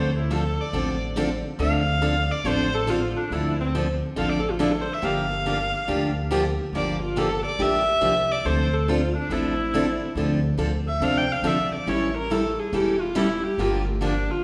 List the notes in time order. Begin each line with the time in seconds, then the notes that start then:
Already playing: D2 C5
0.19 E4
0.30 D3 F3 C4 D4 A4
0.61 D5
0.73 A1 D3 F3 C4 D4 A4
1.16 D3 F3 C4 D4 A4
1.59 D2 D3 F3 C4 D4 A4 F5
2.01 D3 F3 C4 D4 A4
2.32 D5
2.44 A1 D3 F3 C4 D4 A4 C5
2.75 A4
2.87 D3 F3 C4 D4 F4 A4
3.17 D4
3.31 D2 D3 F3 C4 D4 E4 A4
3.61 C4
3.75 D3 F3 C4 D4 A4
4.16 A1 D3 F3 C4 D4 A4 F5
4.29 D5
4.41 A4
4.51 F4
4.59 D3 F3 C4 D4 E4 A4
4.72 A4
4.82 C5
4.93 E5
5.02 G1 D3 F3 A#3 D4 G4 F5
5.46 D3 F3 A#3 D4 G4
5.88 D2 D3 F3 A#3 D4 G4
6.31 D3 F3 A#3 D4 G4
6.73 G1 D3 F3 A#3 D4 G4 D5
7.03 F4
7.16 D3 F3 A#3 D4 G4 A4
7.46 D5
7.59 A#1 D3 F3 A#3 D4 G4 E5
8.01 C2 D3 F3 A#3 D4 G4
8.32 D5
8.45 D2 D3 F3 C4 D4 A4 C5
8.74 A4
8.88 D3 F3 C4 D4 F4 A4
9.17 D4
9.30 A1 D3 F3 C4 D4 E4 A4
9.74 D3 F3 C4 D4 A4
10.15 D2 D3 F3 C4 D4 A4
10.58 D2 D3 F3 C4 D4 A4
10.88 E5
11.00 C2 D3 F3 C4 D4 A4 F5
11.18 G5
11.32 F5
11.43 A#1 D3 F3 C4 D4 A4
11.47 E5
11.75 D5
11.87 A1 E3 G3 C#4 E4 A4 C#5
12.18 A#4
12.30 E3 G3 C#4 E4 A4
12.60 G#4
12.72 E1 E3 G3 C#4 E4 G4 A4
13.01 F4
13.15 E3 G3 C#4 E4 A4
13.44 G4
13.58 G1 D3 F3 A#3 D4 F4 G4
13.89 A3
14.01 D3 F3 A#3 D4 G4
14.31 F4